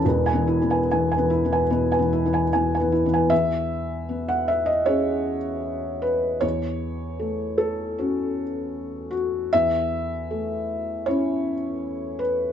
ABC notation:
X:1
M:4/4
L:1/16
Q:1/4=78
K:C#m
V:1 name="Felt piano"
B [Bg] E [Bg] g [Bg] E [Bg] B [Bg] E [Bg] g [Bg] E [Bg] | e4- e f e d c6 B2 | c6 A8 F2 | e8 c6 B2 |]
V:2 name="Felt piano"
(3[E,,,E,,]2 [E,B,]2 [E,B,]2 (3[E,B,]2 [E,B,]2 [E,B,]2 (3B,,2 [E,B,]2 [E,B,]2 (3[E,B,]2 [E,B,]2 [E,B,]2 | E,,4 B,4 [CG]8 | E,,4 A,4 [CF]8 | E,,4 A,4 [CE]8 |]